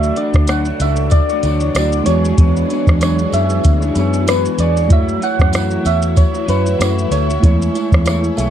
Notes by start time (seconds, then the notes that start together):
Already playing: D2 D3 E3 F#3 A3 D4 F#4 C#5 D5 E5
0.03 shaker
0.15 A3 D4 F#4 D5, closed hi-hat, shaker
0.34 D2, kick, cross-stick, shaker
0.47 D3 F#3 A3 D4 F#4 C#5 F#5, cross-stick, closed hi-hat, tambourine, shaker
0.65 D4 F#4 C#5, shaker
0.70 A3
0.80 C#2 A3 D4 F#4 E5, closed hi-hat, tambourine, shaker
0.84 C#5
0.96 shaker
1.10 D5, kick, closed hi-hat, tambourine, shaker
1.29 A3 D4 F#4 C#5, shaker
1.43 D2 A3 D4 F#4, closed hi-hat, tambourine, shaker
1.47 C#5
1.60 D4 F#4 C#5, shaker
1.64 A3
1.75 D2 D3 F#3 A3 D4 F#4 D5, cross-stick, closed hi-hat, tambourine, shaker
1.92 shaker
2.04 E2 G#3 B3 D4 F#4 C#5, closed hi-hat, tambourine, shaker
2.08 D4 G#4 C#5
2.23 D4 G#4 C#5, shaker
2.38 E2 E3 B3 D4 G#4 C#5, kick, closed hi-hat, shaker
2.56 shaker
2.69 B3 D4 G#4, closed hi-hat, tambourine, shaker
2.73 C#5
2.87 E2, kick, cross-stick, shaker
3.01 E3 B3 D4 G#4 C#5, cross-stick, closed hi-hat, tambourine, shaker
3.18 G#4 C#5, shaker
3.23 D4
3.32 F#2 B3 D4 G#4 C#5 E5, closed hi-hat, tambourine, shaker
3.50 shaker
3.63 D2, kick, closed hi-hat, tambourine, shaker
3.80 D4 G#4 C#5, shaker
3.95 F#2 B3 D4 G#4 C#5, closed hi-hat, tambourine, shaker
4.13 shaker
4.27 E3 B3 D4 G#4 B4 C#5, cross-stick, closed hi-hat, tambourine, shaker
4.45 shaker
4.58 E2 B3 D4 G#4 C#5 D5, closed hi-hat, tambourine, shaker
4.75 D4 G#4 C#5, shaker
4.88 F#2 F#3 A3 E4 F#4, kick, closed hi-hat, shaker
4.92 C#5 E5
5.09 shaker
5.21 A3 E4 F#4 C#5 F#5, closed hi-hat, tambourine, shaker
5.39 F#2, kick, cross-stick, shaker
5.52 F#3 A3 E4 F#4 C#5, cross-stick, closed hi-hat, tambourine, shaker
5.71 shaker
5.82 E2 A3 E4 F#4 C#5 E5, closed hi-hat, tambourine, shaker
6.02 shaker
6.16 C#5, kick, closed hi-hat, tambourine, shaker
6.32 E4 F#4 C#5, shaker
6.46 F#2 A3 E4 F#4 B4 C#5, closed hi-hat, tambourine, shaker
6.63 E4 F#4 C#5, shaker
6.78 F#2 F#3 A3 E4 F#4 C#5, cross-stick, closed hi-hat, tambourine, shaker
6.99 shaker
7.11 D2 A3 E4 F#4 C#5, closed hi-hat, tambourine, shaker
7.27 F#4 C#5, shaker
7.31 E4
7.40 E2 E3 G#3 A3 E4, kick, closed hi-hat, shaker
7.44 E4 G#4 C#5, tambourine
7.62 shaker
7.73 A3 E4 G#4 C#5, closed hi-hat, tambourine, shaker
7.92 E2, kick, cross-stick, shaker
8.05 E3 A3 E4 G#4 C#5, cross-stick, closed hi-hat, tambourine, shaker
8.21 E4 G#4 C#5, shaker
8.36 B1 A3 E4 G#4 C#5 E5, closed hi-hat, tambourine, shaker